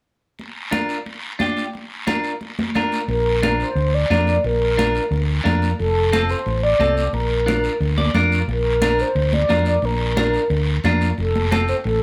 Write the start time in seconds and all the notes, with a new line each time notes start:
0.39 high conga, long guiro
0.71 D4 F4 A#4, high conga, short guiro
0.89 short guiro
1.06 high conga, long guiro
1.39 D4 F4 G4, high conga, short guiro
1.57 short guiro
1.73 high conga, long guiro
2.07 D4 F4 A#4, high conga, short guiro
2.24 short guiro
2.41 high conga, long guiro
2.59 high conga
2.75 D4 F4 A#4, high conga, short guiro
2.92 short guiro
3.08 A#1 A#4, high conga, long guiro
3.43 D4 F4 A#4, high conga, short guiro
3.60 C5, short guiro
3.75 D2, high conga, long guiro
3.94 D5
4.10 F2 D4 F4 A#4, high conga, short guiro
4.27 D5, short guiro
4.44 A#1 A#4, high conga, long guiro
4.77 D4 F4 A#4, high conga, short guiro
4.95 short guiro
5.11 D2, high conga, long guiro
5.44 F2 D4 F4 A#4, high conga, short guiro
5.62 short guiro
5.78 F1 A4, high conga, long guiro
6.12 C4 F4 A4, high conga, short guiro
6.29 C5, short guiro
6.46 A1, high conga, long guiro
6.63 D5
6.79 C2 C4 F4 A4, high conga, short guiro
6.96 D5, short guiro
7.13 A#1 A#4, high conga, long guiro
7.46 D4 F4 A#4, high conga, short guiro
7.64 short guiro
7.80 D2, high conga, long guiro
7.98 D5, high conga
8.14 F2 D4 F4 A#4 F5, high conga, short guiro
8.32 short guiro
8.48 A#1 A#4, high conga, long guiro
8.82 D4 F4 A#4, high conga, short guiro
8.99 C5, short guiro
9.15 D2, high conga, long guiro
9.33 D5, high conga
9.49 F2 D4 F4 A#4, high conga, short guiro
9.65 D5, short guiro
9.82 A#1 A#4, high conga, long guiro
10.17 D4 F4 A#4, high conga, short guiro
10.34 short guiro
10.50 D2, high conga, long guiro
10.84 F2 D4 F4 A#4, high conga, short guiro
11.01 short guiro
11.18 F1 A4, high conga, long guiro
11.35 high conga
11.51 C4 F4 A4, high conga, short guiro
11.68 C5, short guiro
11.84 A1 A4, high conga, long guiro